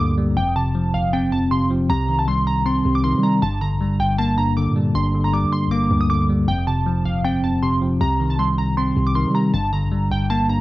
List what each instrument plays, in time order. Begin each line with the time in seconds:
Already playing: 808-style bass D2, tine electric piano G2 G3 A#3
0.00 tine electric piano D3, synth keys D6
0.18 tine electric piano G3
0.37 808-style bass F1, tine electric piano F2, synth keys G5
0.56 tine electric piano C3, synth keys A5
0.75 tine electric piano F3
0.94 808-style bass D#1, synth keys F5
1.13 tine electric piano C4, synth keys G5
1.32 tine electric piano F2, synth keys A5
1.51 tine electric piano C3, synth keys C6
1.70 tine electric piano F3
1.89 808-style bass C2, tine electric piano C3, synth keys A#5
2.09 tine electric piano D#3
2.19 synth keys A5
2.28 tine electric piano G3, synth keys C6
2.47 synth keys A#5
2.66 tine electric piano C4, synth keys C6
2.85 808-style bass C2, tine electric piano C3
2.95 synth keys D6
3.04 tine electric piano D#3, synth keys C6
3.14 808-style bass G3
3.23 tine electric piano G3, synth keys A#5
3.42 808-style bass G1, tine electric piano G2, synth keys A5
3.61 tine electric piano D3, synth keys A#5
3.72 808-style bass A#1
3.80 tine electric piano G3
3.86 808-style bass G1
4.00 808-style bass G1, synth keys G5
4.18 tine electric piano A#3, synth keys A5
4.38 tine electric piano G2, synth keys A#5
4.57 tine electric piano D3, synth keys D6
4.67 808-style bass A#2
4.76 tine electric piano G3
4.95 808-style bass G1, tine electric piano G2, synth keys C6
5.14 tine electric piano D3
5.24 synth keys A#5
5.33 tine electric piano G3, synth keys D6
5.44 808-style bass G2
5.53 synth keys C6
5.67 808-style bass G1
5.71 tine electric piano A#3, synth keys D6
5.91 808-style bass D2, tine electric piano G2
6.01 synth keys D#6
6.10 tine electric piano D3, synth keys D6
6.29 tine electric piano G3
6.48 808-style bass F1, tine electric piano F2, synth keys G5
6.67 tine electric piano C3, synth keys A5
6.86 tine electric piano F3
7.05 808-style bass D#1, synth keys F5
7.24 tine electric piano C4, synth keys G5
7.44 tine electric piano F2, synth keys A5
7.62 tine electric piano C3, synth keys C6
7.82 tine electric piano F3
8.01 808-style bass C2, tine electric piano C3, synth keys A#5
8.20 tine electric piano D#3
8.30 synth keys A5
8.39 tine electric piano G3, synth keys C6
8.58 synth keys A#5
8.77 tine electric piano C4, synth keys C6
8.96 808-style bass C2, tine electric piano C3
9.07 synth keys D6
9.15 tine electric piano D#3, synth keys C6
9.26 808-style bass G3
9.35 tine electric piano G3, synth keys A#5
9.54 808-style bass G1, tine electric piano G2, synth keys A5
9.73 tine electric piano D3, synth keys A#5
9.83 808-style bass A#1
9.92 tine electric piano G3
9.97 808-style bass G1
10.11 808-style bass G1, synth keys G5
10.30 tine electric piano A#3, synth keys A5
10.49 tine electric piano G2, synth keys A#5